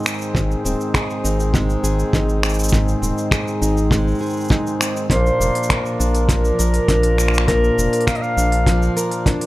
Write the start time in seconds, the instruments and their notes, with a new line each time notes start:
Already playing: nylon-string guitar G#2 G#3 D#4 G#4, harmonium D#3 G#3 C4
0.03 nylon-string guitar C4, finger snap, shaker
0.07 shaker
0.10 shaker
0.14 shaker
0.18 shaker
0.22 shaker
0.35 analog synth bass G#1, nylon-string guitar G#2, kick, shaker
0.51 shaker
0.65 analog synth bass D#1, nylon-string guitar C4, shaker
0.81 shaker
0.94 nylon-string guitar G#4, finger snap, kick, shaker
1.10 shaker
1.24 analog synth bass G#1, nylon-string guitar D#4, shaker
1.40 shaker
1.54 nylon-string guitar G#3, kick, shaker
1.70 shaker
1.83 analog synth bass G#1, nylon-string guitar G#4, shaker
1.99 shaker
2.13 analog synth bass G#1, nylon-string guitar D#4, kick, shaker
2.29 shaker
2.43 nylon-string guitar C4, finger snap, shaker
2.49 shaker
2.54 shaker
2.59 shaker
2.64 shaker
2.69 nylon-string guitar G#2, kick, shaker
2.73 shaker
2.88 shaker
3.02 analog synth bass D#1, nylon-string guitar C4, shaker
3.18 shaker
3.31 nylon-string guitar G#4, finger snap, kick, shaker
3.48 shaker
3.62 analog synth bass G#1, nylon-string guitar D#4, shaker
3.77 shaker
3.91 nylon-string guitar G#3, kick, shaker
4.08 shaker
4.11 shaker
4.15 shaker
4.19 nylon-string guitar G#4, shaker
4.22 shaker
4.26 shaker
4.30 shaker
4.33 shaker
4.37 shaker
4.41 shaker
4.44 shaker
4.48 nylon-string guitar D#4, kick, shaker
4.52 shaker
4.67 shaker
4.80 nylon-string guitar C4, finger snap, shaker
4.97 shaker
5.10 analog synth bass A#1, nylon-string guitar A#2, harmonium F3 A#3 D4, clarinet C5, kick, open hi-hat, shaker
5.26 shaker
5.40 analog synth bass F1, nylon-string guitar A#3, shaker
5.55 open hi-hat, shaker
5.63 shaker
5.70 nylon-string guitar A#4, finger snap, kick, open hi-hat
5.86 shaker
6.00 analog synth bass A#1, nylon-string guitar D4, shaker
6.15 open hi-hat, shaker
6.29 nylon-string guitar F3, clarinet A#4, kick, open hi-hat, shaker
6.45 shaker
6.59 analog synth bass A#1, nylon-string guitar A#4, open hi-hat, shaker
6.74 open hi-hat, shaker
6.88 analog synth bass A#1, nylon-string guitar D4, kick, open hi-hat, shaker
7.03 open hi-hat, shaker
7.18 nylon-string guitar A#3, finger snap, shaker
7.28 finger snap
7.34 finger snap, shaker
7.47 nylon-string guitar A#2, clarinet A#4, kick, open hi-hat, shaker
7.64 shaker
7.78 analog synth bass F1, nylon-string guitar A#3, shaker
7.93 open hi-hat, shaker
8.01 open hi-hat
8.07 nylon-string guitar A#4, clarinet F5, finger snap, kick, open hi-hat, shaker
8.15 clarinet D#5, open hi-hat
8.22 clarinet F5, shaker
8.37 analog synth bass A#1, nylon-string guitar D4, shaker
8.52 open hi-hat, shaker
8.66 nylon-string guitar F3, kick, open hi-hat, shaker
8.83 shaker
8.97 nylon-string guitar A#4, open hi-hat, shaker
9.12 open hi-hat, shaker
9.26 nylon-string guitar D4, kick, open hi-hat, shaker
9.41 open hi-hat, shaker